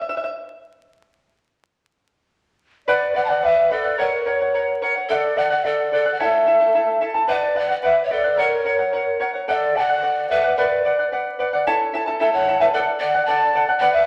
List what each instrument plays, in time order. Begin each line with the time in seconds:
0.02 charango E5
0.09 charango E5
0.17 charango E5
0.24 charango E5
2.87 charango B4 D5 F#5, pan flute B4, quena D5
3.14 charango B4 D5 F#5, pan flute D5, quena F#5
3.25 pan flute F#5, quena A5
3.29 pan flute D5, charango D5 F#5, quena F#5
3.43 charango B4 D5 F#5, pan flute B4, quena E5
3.70 pan flute A4, charango B4 D5 F#5, quena D5
3.84 charango D5 F#5
3.98 charango A#4 C#5 F#5, pan flute A#4, quena C#5
4.26 charango A#4 C#5 F#5
4.41 charango C#5 F#5
4.54 charango A#4 C#5 F#5
4.82 charango A#4 C#5 F#5
4.96 charango C#5 F#5
5.09 pan flute A4, charango A4 D5 F#5, quena E5
5.14 quena D5
5.37 charango A4 D5 F#5, pan flute D5, quena F#5
5.50 pan flute D5, charango D5 F#5, quena F#5
5.65 charango A4 D5 F#5, pan flute A4, quena D5
5.92 charango A4 D5 F#5, pan flute A4, quena D5
6.06 charango D5 F#5
6.12 pan flute D5, quena F#5
6.20 charango E4 A4 C#5 E5 A5, pan flute A4, quena F#5
6.25 quena E5
6.46 charango E4 A4 E5 A5
6.60 charango E4 A4 A5
6.74 charango E4 A4 E5 A5
7.01 charango E4 A4 E5 A5
7.14 charango E4 A4 A5
7.27 charango B4 D5 F#5, pan flute B4, quena E5
7.33 quena D5
7.55 charango B4 D5 F#5, pan flute D5, quena F#5
7.68 charango D5 F#5, pan flute D5, quena F#5
7.82 charango B4 D5 F#5, pan flute B4, quena E5
8.04 pan flute C#5, quena E5
8.10 pan flute A4, charango B4 D5 F#5, quena D5
8.24 charango D5 F#5
8.37 charango A#4 C#5 F#5, pan flute A#4, quena C#5
8.64 charango A#4 C#5 F#5
8.79 charango C#5 F#5
8.93 charango A#4 C#5 F#5
9.20 charango A#4 C#5 F#5
9.34 charango C#5 F#5
9.48 charango A4 D5 F#5, pan flute A4, quena E5
9.54 quena D5
9.75 charango A4 D5 F#5, pan flute D5, quena A5
9.80 quena F#5
9.89 charango D5 F#5
10.02 charango A4 D5 F#5
10.30 charango A4 D5 F#5, pan flute B4, quena E5
10.44 charango D5 F#5
10.57 pan flute B4, charango B4 D5 F#5, quena D5
10.85 charango B4 D5 F#5
10.99 charango D5 F#5
11.12 charango B4 D5 F#5
11.39 charango B4 D5 F#5
11.53 charango D5 F#5
11.67 charango E4 A4 C#5 E5 A5
11.93 charango E4 A4 E5 A5
12.06 charango E4 A4 A5
12.20 charango E4 A4 E5 A5, pan flute A4, quena E5
12.32 pan flute C#5, quena F#5
12.48 charango E4 A4 E5 A5
12.60 charango E4 A4 A5, pan flute B4, quena E5
12.73 pan flute A4, charango A4 D5 F#5, quena D5
13.00 charango A4 D5 F#5, pan flute D5, quena F#5
13.14 charango D5 F#5
13.26 charango A4 D5 F#5, pan flute D5, quena A5
13.55 charango A4 D5 F#5
13.69 charango D5 F#5
13.79 charango B4 D5 F#5, pan flute D5, quena F#5
13.93 pan flute B4, quena E5